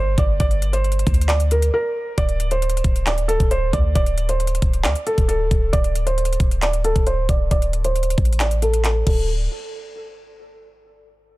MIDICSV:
0, 0, Header, 1, 4, 480
1, 0, Start_track
1, 0, Tempo, 444444
1, 432, Time_signature, 4, 2, 24, 8
1, 12284, End_track
2, 0, Start_track
2, 0, Title_t, "Felt piano"
2, 0, Program_c, 0, 0
2, 0, Note_on_c, 0, 72, 81
2, 165, Note_off_c, 0, 72, 0
2, 198, Note_on_c, 0, 74, 85
2, 405, Note_off_c, 0, 74, 0
2, 431, Note_on_c, 0, 74, 103
2, 770, Note_off_c, 0, 74, 0
2, 789, Note_on_c, 0, 72, 84
2, 1354, Note_off_c, 0, 72, 0
2, 1385, Note_on_c, 0, 74, 87
2, 1597, Note_off_c, 0, 74, 0
2, 1637, Note_on_c, 0, 70, 78
2, 1844, Note_off_c, 0, 70, 0
2, 1876, Note_on_c, 0, 70, 88
2, 2325, Note_off_c, 0, 70, 0
2, 2352, Note_on_c, 0, 74, 107
2, 2691, Note_off_c, 0, 74, 0
2, 2716, Note_on_c, 0, 72, 81
2, 3278, Note_off_c, 0, 72, 0
2, 3311, Note_on_c, 0, 74, 88
2, 3521, Note_off_c, 0, 74, 0
2, 3544, Note_on_c, 0, 69, 93
2, 3757, Note_off_c, 0, 69, 0
2, 3792, Note_on_c, 0, 72, 88
2, 4001, Note_off_c, 0, 72, 0
2, 4029, Note_on_c, 0, 74, 88
2, 4240, Note_off_c, 0, 74, 0
2, 4269, Note_on_c, 0, 74, 101
2, 4609, Note_off_c, 0, 74, 0
2, 4635, Note_on_c, 0, 72, 71
2, 5197, Note_off_c, 0, 72, 0
2, 5226, Note_on_c, 0, 74, 77
2, 5438, Note_off_c, 0, 74, 0
2, 5471, Note_on_c, 0, 69, 81
2, 5681, Note_off_c, 0, 69, 0
2, 5706, Note_on_c, 0, 69, 79
2, 6160, Note_off_c, 0, 69, 0
2, 6186, Note_on_c, 0, 74, 110
2, 6527, Note_off_c, 0, 74, 0
2, 6550, Note_on_c, 0, 72, 76
2, 7115, Note_off_c, 0, 72, 0
2, 7157, Note_on_c, 0, 74, 90
2, 7364, Note_off_c, 0, 74, 0
2, 7392, Note_on_c, 0, 69, 92
2, 7601, Note_off_c, 0, 69, 0
2, 7632, Note_on_c, 0, 72, 88
2, 7841, Note_off_c, 0, 72, 0
2, 7873, Note_on_c, 0, 74, 79
2, 8082, Note_off_c, 0, 74, 0
2, 8111, Note_on_c, 0, 74, 103
2, 8450, Note_off_c, 0, 74, 0
2, 8474, Note_on_c, 0, 72, 81
2, 9037, Note_off_c, 0, 72, 0
2, 9074, Note_on_c, 0, 74, 81
2, 9283, Note_off_c, 0, 74, 0
2, 9313, Note_on_c, 0, 69, 88
2, 9522, Note_off_c, 0, 69, 0
2, 9792, Note_on_c, 0, 69, 85
2, 10015, Note_off_c, 0, 69, 0
2, 12284, End_track
3, 0, Start_track
3, 0, Title_t, "808-style bass"
3, 0, Program_c, 1, 38
3, 0, Note_on_c, 1, 31, 101
3, 178, Note_off_c, 1, 31, 0
3, 192, Note_on_c, 1, 31, 101
3, 423, Note_off_c, 1, 31, 0
3, 432, Note_on_c, 1, 31, 112
3, 1123, Note_off_c, 1, 31, 0
3, 1152, Note_on_c, 1, 38, 102
3, 1843, Note_off_c, 1, 38, 0
3, 2352, Note_on_c, 1, 26, 111
3, 3043, Note_off_c, 1, 26, 0
3, 3072, Note_on_c, 1, 26, 107
3, 3648, Note_off_c, 1, 26, 0
3, 3673, Note_on_c, 1, 26, 101
3, 4018, Note_off_c, 1, 26, 0
3, 4032, Note_on_c, 1, 38, 107
3, 4262, Note_off_c, 1, 38, 0
3, 4272, Note_on_c, 1, 26, 110
3, 4963, Note_off_c, 1, 26, 0
3, 4992, Note_on_c, 1, 26, 109
3, 5232, Note_on_c, 1, 38, 95
3, 5248, Note_off_c, 1, 26, 0
3, 5346, Note_off_c, 1, 38, 0
3, 5593, Note_on_c, 1, 26, 99
3, 5938, Note_off_c, 1, 26, 0
3, 5952, Note_on_c, 1, 26, 105
3, 6183, Note_off_c, 1, 26, 0
3, 6192, Note_on_c, 1, 26, 113
3, 6883, Note_off_c, 1, 26, 0
3, 6913, Note_on_c, 1, 26, 105
3, 7488, Note_off_c, 1, 26, 0
3, 7513, Note_on_c, 1, 26, 98
3, 7858, Note_off_c, 1, 26, 0
3, 7873, Note_on_c, 1, 26, 105
3, 8103, Note_off_c, 1, 26, 0
3, 8112, Note_on_c, 1, 26, 111
3, 8803, Note_off_c, 1, 26, 0
3, 8832, Note_on_c, 1, 33, 107
3, 9754, Note_off_c, 1, 33, 0
3, 9792, Note_on_c, 1, 26, 108
3, 10238, Note_off_c, 1, 26, 0
3, 12284, End_track
4, 0, Start_track
4, 0, Title_t, "Drums"
4, 192, Note_on_c, 9, 36, 92
4, 192, Note_on_c, 9, 42, 73
4, 300, Note_off_c, 9, 36, 0
4, 300, Note_off_c, 9, 42, 0
4, 432, Note_on_c, 9, 36, 112
4, 432, Note_on_c, 9, 42, 88
4, 540, Note_off_c, 9, 36, 0
4, 540, Note_off_c, 9, 42, 0
4, 550, Note_on_c, 9, 42, 64
4, 658, Note_off_c, 9, 42, 0
4, 671, Note_on_c, 9, 42, 80
4, 779, Note_off_c, 9, 42, 0
4, 792, Note_on_c, 9, 42, 62
4, 900, Note_off_c, 9, 42, 0
4, 912, Note_on_c, 9, 42, 43
4, 991, Note_off_c, 9, 42, 0
4, 991, Note_on_c, 9, 42, 51
4, 1072, Note_off_c, 9, 42, 0
4, 1072, Note_on_c, 9, 42, 57
4, 1152, Note_off_c, 9, 42, 0
4, 1152, Note_on_c, 9, 36, 105
4, 1152, Note_on_c, 9, 42, 64
4, 1232, Note_off_c, 9, 42, 0
4, 1232, Note_on_c, 9, 42, 70
4, 1260, Note_off_c, 9, 36, 0
4, 1312, Note_off_c, 9, 42, 0
4, 1312, Note_on_c, 9, 42, 74
4, 1392, Note_off_c, 9, 42, 0
4, 1392, Note_on_c, 9, 39, 127
4, 1392, Note_on_c, 9, 42, 86
4, 1500, Note_off_c, 9, 39, 0
4, 1500, Note_off_c, 9, 42, 0
4, 1512, Note_on_c, 9, 42, 64
4, 1620, Note_off_c, 9, 42, 0
4, 1632, Note_on_c, 9, 42, 69
4, 1740, Note_off_c, 9, 42, 0
4, 1754, Note_on_c, 9, 42, 62
4, 1862, Note_off_c, 9, 42, 0
4, 2352, Note_on_c, 9, 36, 106
4, 2352, Note_on_c, 9, 42, 84
4, 2460, Note_off_c, 9, 36, 0
4, 2460, Note_off_c, 9, 42, 0
4, 2470, Note_on_c, 9, 42, 62
4, 2578, Note_off_c, 9, 42, 0
4, 2591, Note_on_c, 9, 42, 81
4, 2699, Note_off_c, 9, 42, 0
4, 2711, Note_on_c, 9, 42, 59
4, 2819, Note_off_c, 9, 42, 0
4, 2831, Note_on_c, 9, 42, 61
4, 2911, Note_off_c, 9, 42, 0
4, 2911, Note_on_c, 9, 42, 61
4, 2991, Note_off_c, 9, 42, 0
4, 2991, Note_on_c, 9, 42, 60
4, 3071, Note_off_c, 9, 42, 0
4, 3071, Note_on_c, 9, 42, 81
4, 3072, Note_on_c, 9, 36, 100
4, 3179, Note_off_c, 9, 42, 0
4, 3180, Note_off_c, 9, 36, 0
4, 3193, Note_on_c, 9, 42, 61
4, 3301, Note_off_c, 9, 42, 0
4, 3311, Note_on_c, 9, 39, 126
4, 3312, Note_on_c, 9, 42, 84
4, 3419, Note_off_c, 9, 39, 0
4, 3420, Note_off_c, 9, 42, 0
4, 3432, Note_on_c, 9, 42, 63
4, 3540, Note_off_c, 9, 42, 0
4, 3551, Note_on_c, 9, 42, 70
4, 3659, Note_off_c, 9, 42, 0
4, 3673, Note_on_c, 9, 36, 96
4, 3673, Note_on_c, 9, 42, 59
4, 3781, Note_off_c, 9, 36, 0
4, 3781, Note_off_c, 9, 42, 0
4, 3791, Note_on_c, 9, 42, 86
4, 3899, Note_off_c, 9, 42, 0
4, 4032, Note_on_c, 9, 36, 90
4, 4032, Note_on_c, 9, 42, 72
4, 4140, Note_off_c, 9, 36, 0
4, 4140, Note_off_c, 9, 42, 0
4, 4271, Note_on_c, 9, 42, 82
4, 4272, Note_on_c, 9, 36, 103
4, 4379, Note_off_c, 9, 42, 0
4, 4380, Note_off_c, 9, 36, 0
4, 4389, Note_on_c, 9, 42, 61
4, 4497, Note_off_c, 9, 42, 0
4, 4510, Note_on_c, 9, 42, 80
4, 4618, Note_off_c, 9, 42, 0
4, 4631, Note_on_c, 9, 42, 61
4, 4739, Note_off_c, 9, 42, 0
4, 4752, Note_on_c, 9, 42, 60
4, 4831, Note_off_c, 9, 42, 0
4, 4831, Note_on_c, 9, 42, 60
4, 4912, Note_off_c, 9, 42, 0
4, 4912, Note_on_c, 9, 42, 60
4, 4991, Note_off_c, 9, 42, 0
4, 4991, Note_on_c, 9, 42, 82
4, 4992, Note_on_c, 9, 36, 100
4, 5099, Note_off_c, 9, 42, 0
4, 5100, Note_off_c, 9, 36, 0
4, 5114, Note_on_c, 9, 42, 59
4, 5222, Note_off_c, 9, 42, 0
4, 5231, Note_on_c, 9, 39, 126
4, 5232, Note_on_c, 9, 42, 84
4, 5339, Note_off_c, 9, 39, 0
4, 5340, Note_off_c, 9, 42, 0
4, 5352, Note_on_c, 9, 42, 64
4, 5460, Note_off_c, 9, 42, 0
4, 5472, Note_on_c, 9, 42, 72
4, 5580, Note_off_c, 9, 42, 0
4, 5593, Note_on_c, 9, 36, 96
4, 5594, Note_on_c, 9, 42, 59
4, 5701, Note_off_c, 9, 36, 0
4, 5702, Note_off_c, 9, 42, 0
4, 5711, Note_on_c, 9, 42, 84
4, 5819, Note_off_c, 9, 42, 0
4, 5952, Note_on_c, 9, 36, 92
4, 5952, Note_on_c, 9, 42, 73
4, 6060, Note_off_c, 9, 36, 0
4, 6060, Note_off_c, 9, 42, 0
4, 6192, Note_on_c, 9, 36, 111
4, 6192, Note_on_c, 9, 42, 84
4, 6300, Note_off_c, 9, 36, 0
4, 6300, Note_off_c, 9, 42, 0
4, 6310, Note_on_c, 9, 42, 62
4, 6418, Note_off_c, 9, 42, 0
4, 6431, Note_on_c, 9, 42, 80
4, 6539, Note_off_c, 9, 42, 0
4, 6552, Note_on_c, 9, 42, 64
4, 6660, Note_off_c, 9, 42, 0
4, 6672, Note_on_c, 9, 42, 61
4, 6752, Note_off_c, 9, 42, 0
4, 6752, Note_on_c, 9, 42, 60
4, 6832, Note_off_c, 9, 42, 0
4, 6832, Note_on_c, 9, 42, 61
4, 6912, Note_off_c, 9, 42, 0
4, 6912, Note_on_c, 9, 42, 85
4, 6913, Note_on_c, 9, 36, 104
4, 7020, Note_off_c, 9, 42, 0
4, 7021, Note_off_c, 9, 36, 0
4, 7035, Note_on_c, 9, 42, 60
4, 7143, Note_off_c, 9, 42, 0
4, 7153, Note_on_c, 9, 39, 125
4, 7153, Note_on_c, 9, 42, 87
4, 7261, Note_off_c, 9, 39, 0
4, 7261, Note_off_c, 9, 42, 0
4, 7273, Note_on_c, 9, 42, 62
4, 7381, Note_off_c, 9, 42, 0
4, 7392, Note_on_c, 9, 42, 70
4, 7500, Note_off_c, 9, 42, 0
4, 7513, Note_on_c, 9, 36, 97
4, 7514, Note_on_c, 9, 42, 61
4, 7621, Note_off_c, 9, 36, 0
4, 7622, Note_off_c, 9, 42, 0
4, 7632, Note_on_c, 9, 42, 84
4, 7740, Note_off_c, 9, 42, 0
4, 7872, Note_on_c, 9, 42, 71
4, 7873, Note_on_c, 9, 36, 94
4, 7980, Note_off_c, 9, 42, 0
4, 7981, Note_off_c, 9, 36, 0
4, 8112, Note_on_c, 9, 36, 108
4, 8112, Note_on_c, 9, 42, 83
4, 8220, Note_off_c, 9, 36, 0
4, 8220, Note_off_c, 9, 42, 0
4, 8230, Note_on_c, 9, 42, 65
4, 8338, Note_off_c, 9, 42, 0
4, 8352, Note_on_c, 9, 42, 80
4, 8460, Note_off_c, 9, 42, 0
4, 8472, Note_on_c, 9, 42, 62
4, 8580, Note_off_c, 9, 42, 0
4, 8592, Note_on_c, 9, 42, 43
4, 8672, Note_off_c, 9, 42, 0
4, 8672, Note_on_c, 9, 42, 50
4, 8752, Note_off_c, 9, 42, 0
4, 8752, Note_on_c, 9, 42, 59
4, 8832, Note_off_c, 9, 42, 0
4, 8832, Note_on_c, 9, 36, 98
4, 8832, Note_on_c, 9, 42, 61
4, 8912, Note_off_c, 9, 42, 0
4, 8912, Note_on_c, 9, 42, 70
4, 8940, Note_off_c, 9, 36, 0
4, 8992, Note_off_c, 9, 42, 0
4, 8992, Note_on_c, 9, 42, 74
4, 9072, Note_on_c, 9, 39, 127
4, 9073, Note_off_c, 9, 42, 0
4, 9073, Note_on_c, 9, 42, 86
4, 9180, Note_off_c, 9, 39, 0
4, 9181, Note_off_c, 9, 42, 0
4, 9192, Note_on_c, 9, 42, 64
4, 9300, Note_off_c, 9, 42, 0
4, 9312, Note_on_c, 9, 42, 69
4, 9420, Note_off_c, 9, 42, 0
4, 9434, Note_on_c, 9, 42, 60
4, 9542, Note_off_c, 9, 42, 0
4, 9552, Note_on_c, 9, 42, 81
4, 9553, Note_on_c, 9, 39, 99
4, 9660, Note_off_c, 9, 42, 0
4, 9661, Note_off_c, 9, 39, 0
4, 9792, Note_on_c, 9, 36, 116
4, 9792, Note_on_c, 9, 49, 90
4, 9900, Note_off_c, 9, 36, 0
4, 9900, Note_off_c, 9, 49, 0
4, 12284, End_track
0, 0, End_of_file